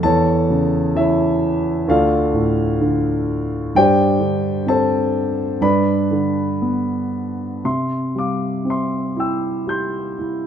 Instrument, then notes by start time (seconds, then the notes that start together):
grand piano
0.03 E2 A4 C#5 A5
0.50 C#3
0.95 E3 E4 C#5 E5
1.88 D2 F4 A4 D5 F5
2.33 A2
2.81 D3
3.75 G2 G4 C5 D5 G5
4.20 D3
4.67 C4 A4 C5 A5
5.61 G2 B4 D5 B5
6.11 D3
6.62 B3
7.65 C3 E5 C6
8.15 G3 F5 D6
8.65 C4
8.70 E5 C6
9.16 E4 G5 E6
9.67 G4 C6 G6
10.19 E4